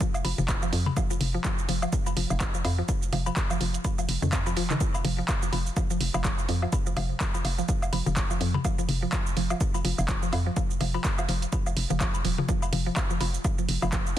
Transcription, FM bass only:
0, 0, Header, 1, 2, 480
1, 0, Start_track
1, 0, Tempo, 480000
1, 966, Time_signature, 4, 2, 24, 8
1, 14189, End_track
2, 0, Start_track
2, 0, Title_t, "FM bass"
2, 0, Program_c, 0, 39
2, 246, Note_on_c, 0, 29, 92
2, 344, Note_off_c, 0, 29, 0
2, 384, Note_on_c, 0, 29, 98
2, 543, Note_off_c, 0, 29, 0
2, 726, Note_on_c, 0, 41, 103
2, 906, Note_off_c, 0, 41, 0
2, 1206, Note_on_c, 0, 29, 100
2, 1386, Note_off_c, 0, 29, 0
2, 1686, Note_on_c, 0, 29, 91
2, 1866, Note_off_c, 0, 29, 0
2, 2166, Note_on_c, 0, 29, 91
2, 2264, Note_off_c, 0, 29, 0
2, 2304, Note_on_c, 0, 29, 99
2, 2463, Note_off_c, 0, 29, 0
2, 2646, Note_on_c, 0, 41, 104
2, 2827, Note_off_c, 0, 41, 0
2, 3126, Note_on_c, 0, 29, 103
2, 3306, Note_off_c, 0, 29, 0
2, 3606, Note_on_c, 0, 29, 90
2, 3786, Note_off_c, 0, 29, 0
2, 4086, Note_on_c, 0, 29, 83
2, 4183, Note_off_c, 0, 29, 0
2, 4223, Note_on_c, 0, 41, 86
2, 4566, Note_on_c, 0, 29, 80
2, 4581, Note_off_c, 0, 41, 0
2, 4746, Note_off_c, 0, 29, 0
2, 5046, Note_on_c, 0, 29, 105
2, 5226, Note_off_c, 0, 29, 0
2, 5526, Note_on_c, 0, 29, 95
2, 5706, Note_off_c, 0, 29, 0
2, 6006, Note_on_c, 0, 29, 92
2, 6103, Note_off_c, 0, 29, 0
2, 6143, Note_on_c, 0, 29, 96
2, 6303, Note_off_c, 0, 29, 0
2, 6486, Note_on_c, 0, 41, 104
2, 6666, Note_off_c, 0, 41, 0
2, 6966, Note_on_c, 0, 29, 104
2, 7146, Note_off_c, 0, 29, 0
2, 7446, Note_on_c, 0, 29, 94
2, 7626, Note_off_c, 0, 29, 0
2, 7926, Note_on_c, 0, 29, 94
2, 8024, Note_off_c, 0, 29, 0
2, 8064, Note_on_c, 0, 29, 97
2, 8223, Note_off_c, 0, 29, 0
2, 8406, Note_on_c, 0, 41, 105
2, 8586, Note_off_c, 0, 41, 0
2, 8886, Note_on_c, 0, 29, 106
2, 9066, Note_off_c, 0, 29, 0
2, 9367, Note_on_c, 0, 29, 93
2, 9547, Note_off_c, 0, 29, 0
2, 9846, Note_on_c, 0, 29, 91
2, 9944, Note_off_c, 0, 29, 0
2, 9984, Note_on_c, 0, 29, 98
2, 10144, Note_off_c, 0, 29, 0
2, 10326, Note_on_c, 0, 41, 105
2, 10506, Note_off_c, 0, 41, 0
2, 10806, Note_on_c, 0, 29, 103
2, 10986, Note_off_c, 0, 29, 0
2, 11286, Note_on_c, 0, 29, 92
2, 11466, Note_off_c, 0, 29, 0
2, 11766, Note_on_c, 0, 29, 90
2, 11863, Note_off_c, 0, 29, 0
2, 11904, Note_on_c, 0, 29, 83
2, 12063, Note_off_c, 0, 29, 0
2, 12246, Note_on_c, 0, 27, 80
2, 12426, Note_off_c, 0, 27, 0
2, 12726, Note_on_c, 0, 29, 103
2, 12906, Note_off_c, 0, 29, 0
2, 13206, Note_on_c, 0, 29, 90
2, 13386, Note_off_c, 0, 29, 0
2, 13686, Note_on_c, 0, 29, 92
2, 13784, Note_off_c, 0, 29, 0
2, 13824, Note_on_c, 0, 29, 99
2, 13983, Note_off_c, 0, 29, 0
2, 14189, End_track
0, 0, End_of_file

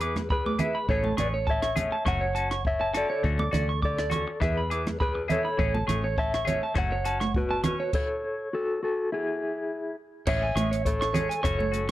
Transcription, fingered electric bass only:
0, 0, Header, 1, 2, 480
1, 0, Start_track
1, 0, Key_signature, 3, "major"
1, 0, Tempo, 585938
1, 731, Time_signature, 4, 2, 24, 8
1, 9757, End_track
2, 0, Start_track
2, 0, Title_t, "Fingered electric bass"
2, 0, Program_c, 0, 33
2, 0, Note_on_c, 0, 40, 77
2, 555, Note_off_c, 0, 40, 0
2, 725, Note_on_c, 0, 33, 90
2, 925, Note_off_c, 0, 33, 0
2, 967, Note_on_c, 0, 33, 77
2, 1560, Note_off_c, 0, 33, 0
2, 1691, Note_on_c, 0, 30, 82
2, 2480, Note_off_c, 0, 30, 0
2, 2655, Note_on_c, 0, 38, 93
2, 2850, Note_off_c, 0, 38, 0
2, 2894, Note_on_c, 0, 38, 87
2, 3484, Note_off_c, 0, 38, 0
2, 3616, Note_on_c, 0, 40, 79
2, 4402, Note_off_c, 0, 40, 0
2, 4581, Note_on_c, 0, 33, 98
2, 4774, Note_off_c, 0, 33, 0
2, 4816, Note_on_c, 0, 33, 80
2, 5405, Note_off_c, 0, 33, 0
2, 5533, Note_on_c, 0, 30, 75
2, 6320, Note_off_c, 0, 30, 0
2, 8415, Note_on_c, 0, 33, 86
2, 8609, Note_off_c, 0, 33, 0
2, 8648, Note_on_c, 0, 33, 85
2, 9238, Note_off_c, 0, 33, 0
2, 9375, Note_on_c, 0, 30, 87
2, 9757, Note_off_c, 0, 30, 0
2, 9757, End_track
0, 0, End_of_file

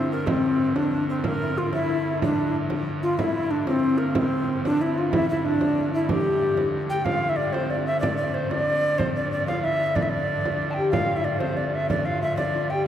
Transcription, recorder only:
0, 0, Header, 1, 2, 480
1, 0, Start_track
1, 0, Tempo, 322581
1, 406, Time_signature, 6, 3, 24, 8
1, 19151, End_track
2, 0, Start_track
2, 0, Title_t, "Recorder"
2, 0, Program_c, 0, 74
2, 0, Note_on_c, 0, 60, 94
2, 166, Note_off_c, 0, 60, 0
2, 175, Note_on_c, 0, 70, 83
2, 401, Note_on_c, 0, 60, 90
2, 423, Note_off_c, 0, 70, 0
2, 1125, Note_on_c, 0, 62, 98
2, 1147, Note_off_c, 0, 60, 0
2, 1607, Note_off_c, 0, 62, 0
2, 1626, Note_on_c, 0, 60, 81
2, 1852, Note_on_c, 0, 70, 86
2, 1874, Note_off_c, 0, 60, 0
2, 2349, Note_on_c, 0, 65, 90
2, 2371, Note_off_c, 0, 70, 0
2, 2576, Note_off_c, 0, 65, 0
2, 2585, Note_on_c, 0, 64, 98
2, 3249, Note_off_c, 0, 64, 0
2, 3321, Note_on_c, 0, 62, 76
2, 3810, Note_off_c, 0, 62, 0
2, 4507, Note_on_c, 0, 65, 73
2, 4724, Note_off_c, 0, 65, 0
2, 4732, Note_on_c, 0, 64, 89
2, 5220, Note_on_c, 0, 62, 79
2, 5242, Note_off_c, 0, 64, 0
2, 5458, Note_off_c, 0, 62, 0
2, 5470, Note_on_c, 0, 60, 86
2, 5919, Note_on_c, 0, 70, 81
2, 5942, Note_off_c, 0, 60, 0
2, 6184, Note_on_c, 0, 60, 88
2, 6206, Note_off_c, 0, 70, 0
2, 6901, Note_off_c, 0, 60, 0
2, 6923, Note_on_c, 0, 62, 92
2, 7163, Note_on_c, 0, 64, 83
2, 7185, Note_off_c, 0, 62, 0
2, 7408, Note_on_c, 0, 65, 88
2, 7430, Note_off_c, 0, 64, 0
2, 7618, Note_on_c, 0, 64, 106
2, 7640, Note_off_c, 0, 65, 0
2, 7858, Note_off_c, 0, 64, 0
2, 7885, Note_on_c, 0, 64, 89
2, 8105, Note_on_c, 0, 62, 97
2, 8127, Note_off_c, 0, 64, 0
2, 8822, Note_off_c, 0, 62, 0
2, 8839, Note_on_c, 0, 64, 91
2, 9096, Note_on_c, 0, 67, 95
2, 9118, Note_off_c, 0, 64, 0
2, 9931, Note_off_c, 0, 67, 0
2, 10263, Note_on_c, 0, 79, 88
2, 10486, Note_on_c, 0, 77, 94
2, 10508, Note_off_c, 0, 79, 0
2, 10849, Note_on_c, 0, 76, 80
2, 10871, Note_off_c, 0, 77, 0
2, 10956, Note_on_c, 0, 74, 87
2, 10978, Note_off_c, 0, 76, 0
2, 11202, Note_on_c, 0, 72, 92
2, 11224, Note_off_c, 0, 74, 0
2, 11461, Note_on_c, 0, 74, 85
2, 11484, Note_off_c, 0, 72, 0
2, 11696, Note_off_c, 0, 74, 0
2, 11705, Note_on_c, 0, 76, 88
2, 11900, Note_off_c, 0, 76, 0
2, 11909, Note_on_c, 0, 74, 93
2, 12145, Note_off_c, 0, 74, 0
2, 12160, Note_on_c, 0, 74, 82
2, 12416, Note_on_c, 0, 72, 84
2, 12439, Note_off_c, 0, 74, 0
2, 12653, Note_on_c, 0, 74, 95
2, 12675, Note_off_c, 0, 72, 0
2, 13368, Note_on_c, 0, 72, 84
2, 13390, Note_off_c, 0, 74, 0
2, 13612, Note_off_c, 0, 72, 0
2, 13625, Note_on_c, 0, 74, 81
2, 13845, Note_off_c, 0, 74, 0
2, 13871, Note_on_c, 0, 74, 84
2, 14084, Note_off_c, 0, 74, 0
2, 14093, Note_on_c, 0, 77, 97
2, 14345, Note_on_c, 0, 76, 94
2, 14367, Note_off_c, 0, 77, 0
2, 14813, Note_on_c, 0, 74, 87
2, 14835, Note_off_c, 0, 76, 0
2, 14917, Note_on_c, 0, 76, 71
2, 14940, Note_off_c, 0, 74, 0
2, 15020, Note_on_c, 0, 74, 91
2, 15042, Note_off_c, 0, 76, 0
2, 15930, Note_on_c, 0, 81, 65
2, 15953, Note_off_c, 0, 74, 0
2, 15982, Note_on_c, 0, 79, 83
2, 16004, Note_off_c, 0, 81, 0
2, 16228, Note_off_c, 0, 79, 0
2, 16237, Note_on_c, 0, 77, 96
2, 16608, Note_on_c, 0, 76, 73
2, 16630, Note_off_c, 0, 77, 0
2, 16732, Note_on_c, 0, 74, 85
2, 16754, Note_off_c, 0, 76, 0
2, 16950, Note_on_c, 0, 72, 81
2, 16972, Note_off_c, 0, 74, 0
2, 17217, Note_on_c, 0, 74, 75
2, 17239, Note_off_c, 0, 72, 0
2, 17487, Note_on_c, 0, 76, 81
2, 17510, Note_off_c, 0, 74, 0
2, 17692, Note_off_c, 0, 76, 0
2, 17701, Note_on_c, 0, 74, 85
2, 17935, Note_on_c, 0, 77, 77
2, 17958, Note_off_c, 0, 74, 0
2, 18173, Note_off_c, 0, 77, 0
2, 18184, Note_on_c, 0, 76, 84
2, 18395, Note_off_c, 0, 76, 0
2, 18404, Note_on_c, 0, 74, 88
2, 18901, Note_on_c, 0, 79, 80
2, 18923, Note_off_c, 0, 74, 0
2, 19131, Note_off_c, 0, 79, 0
2, 19151, End_track
0, 0, End_of_file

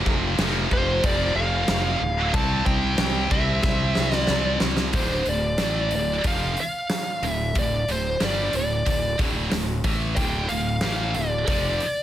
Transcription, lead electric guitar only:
0, 0, Header, 1, 2, 480
1, 0, Start_track
1, 0, Key_signature, -1, "minor"
1, 0, Tempo, 652884
1, 1720, Time_signature, 4, 2, 24, 8
1, 8844, End_track
2, 0, Start_track
2, 0, Title_t, "Lead electric guitar"
2, 0, Program_c, 0, 29
2, 536, Note_on_c, 0, 72, 80
2, 775, Note_on_c, 0, 74, 90
2, 777, Note_off_c, 0, 72, 0
2, 992, Note_off_c, 0, 74, 0
2, 1000, Note_on_c, 0, 77, 99
2, 1717, Note_on_c, 0, 81, 110
2, 1740, Note_off_c, 0, 77, 0
2, 1952, Note_off_c, 0, 81, 0
2, 1955, Note_on_c, 0, 79, 106
2, 2437, Note_on_c, 0, 76, 93
2, 2450, Note_off_c, 0, 79, 0
2, 3070, Note_off_c, 0, 76, 0
2, 3070, Note_on_c, 0, 74, 93
2, 3366, Note_off_c, 0, 74, 0
2, 3643, Note_on_c, 0, 72, 85
2, 3887, Note_off_c, 0, 72, 0
2, 3888, Note_on_c, 0, 74, 83
2, 4368, Note_off_c, 0, 74, 0
2, 4376, Note_on_c, 0, 74, 86
2, 4591, Note_off_c, 0, 74, 0
2, 4611, Note_on_c, 0, 77, 95
2, 4847, Note_off_c, 0, 77, 0
2, 4856, Note_on_c, 0, 77, 97
2, 5349, Note_off_c, 0, 77, 0
2, 5349, Note_on_c, 0, 76, 97
2, 5575, Note_off_c, 0, 76, 0
2, 5578, Note_on_c, 0, 74, 90
2, 5793, Note_off_c, 0, 74, 0
2, 5819, Note_on_c, 0, 72, 78
2, 6057, Note_off_c, 0, 72, 0
2, 6062, Note_on_c, 0, 74, 88
2, 6288, Note_off_c, 0, 74, 0
2, 6296, Note_on_c, 0, 74, 78
2, 6741, Note_off_c, 0, 74, 0
2, 7473, Note_on_c, 0, 79, 108
2, 7702, Note_off_c, 0, 79, 0
2, 7709, Note_on_c, 0, 77, 96
2, 7954, Note_off_c, 0, 77, 0
2, 7963, Note_on_c, 0, 77, 90
2, 8200, Note_off_c, 0, 77, 0
2, 8203, Note_on_c, 0, 74, 87
2, 8434, Note_off_c, 0, 74, 0
2, 8443, Note_on_c, 0, 74, 85
2, 8844, Note_off_c, 0, 74, 0
2, 8844, End_track
0, 0, End_of_file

